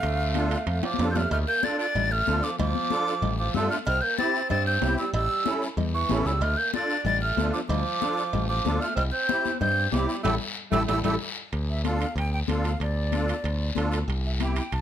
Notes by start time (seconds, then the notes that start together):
Already playing: A3 F5
0.03 D2, high timbale, long guiro
0.35 D4 F4 A4, high conga, high timbale, short guiro
0.51 high timbale, short guiro
0.67 F2, high timbale, long guiro
0.83 F3 D6, high conga, high timbale
0.94 high conga
0.99 F2 D4 F4 A4, low timbale, short guiro
1.11 A#3 G6
1.16 A3 F6, low conga, low timbale, short guiro
1.31 D2 A3 F6, cowbell, high conga, long guiro
1.47 A#3 G6
1.63 D4 F4 A4 A6, high conga, short guiro
1.78 D4 A6, short guiro
1.95 A1, cowbell, high conga, low conga, long guiro
2.11 A3 F6
2.27 D2 D4 F4 A4, high conga, short guiro
2.42 F3 D6, short guiro
2.58 D2 F3 D6, cowbell, high conga, low conga, long guiro
2.75 high conga
2.90 D4 F4 A4, high conga, short guiro
3.07 short guiro
3.22 A1, cowbell, high conga, low conga, long guiro
3.39 F3 D6
3.54 G2 A3 D4 F4 A4 E6, high conga, low conga, short guiro
3.70 A3 F6, short guiro
3.86 C2 C4 F6, cowbell, high conga, long guiro
4.01 A#3 G6
4.18 C4 E4 G4 A6, high conga, short guiro
4.35 short guiro
4.50 G2 C4 A6, cowbell, high conga, low conga, long guiro
4.67 C4 G6
4.82 C2 C4 E4 G4, high conga, low timbale, short guiro
4.98 G3 E6, short guiro
5.13 A1 G3 E6, cowbell, high conga, long guiro
5.45 C#4 E4 A4, high conga, short guiro
5.62 short guiro
5.77 E2, cowbell, high conga, low conga, long guiro
5.94 E3 C#6
6.09 A1 C#4 E4 A4, high conga, low timbale, short guiro
6.25 C#2 G3 E6, short guiro
6.41 D2 A3 F6, cowbell, high conga, long guiro
6.57 A#3 G6
6.74 D4 F4 A4 A6, high conga, short guiro
6.90 short guiro
7.05 A1 D4 A6, cowbell, high conga, low conga, long guiro
7.22 A3 F6
7.37 D2 D4 F4 A4, high conga, short guiro
7.53 F3 D6, short guiro
7.68 D2 F3 D6, cowbell, high conga, low conga, long guiro
8.01 D4 F4 A4, high conga, short guiro
8.17 short guiro
8.33 A1, cowbell, high conga, low conga, long guiro
8.49 F3 D6
8.65 D2 D4 F4 A4, high conga, short guiro
8.81 A3 F6, short guiro
8.95 C2 C4 F6, cowbell, high conga, long guiro
9.12 C4 G6
9.29 C4 E4 G4, high conga, short guiro
9.45 high conga, short guiro
9.60 G2 C4 G6, cowbell, high conga, low conga, long guiro
9.91 C2 G3 C4 E4 G4 D6, high conga, low timbale, short guiro
10.09 short guiro
10.23 A1 A3 E4 G4 A4 E6, low conga, high timbale, long guiro
10.71 A1 A3 E4 G4 A4 E6, low conga, high timbale, long guiro
10.87 A1 A3 E4 G4 A4 E6, low conga, high timbale, long guiro
11.04 A1 A3 E4 G4 A4 E6, low conga, high timbale, long guiro
11.53 D2, high timbale, long guiro
11.70 E5
11.84 D4 F4 A4 F5, high conga, high timbale, short guiro
12.01 high timbale, short guiro
12.16 D2 G5, high timbale, long guiro
12.34 G5
12.48 D2 D4 F4 A4 F5, high conga, high timbale, short guiro
12.64 high timbale, short guiro
12.80 D2 D5, high timbale, long guiro
13.12 D4 F4 A4, high conga, high timbale, short guiro
13.28 high timbale, short guiro
13.44 D2, high timbale, long guiro
13.75 D2 D4 F4 A4, high conga, high timbale, short guiro
13.92 high timbale, short guiro
14.08 C2, high timbale, long guiro
14.26 E5
14.40 C4 E4 G4 G5, high conga, high timbale, short guiro
14.56 high timbale, short guiro
14.72 C2 A5, high timbale, long guiro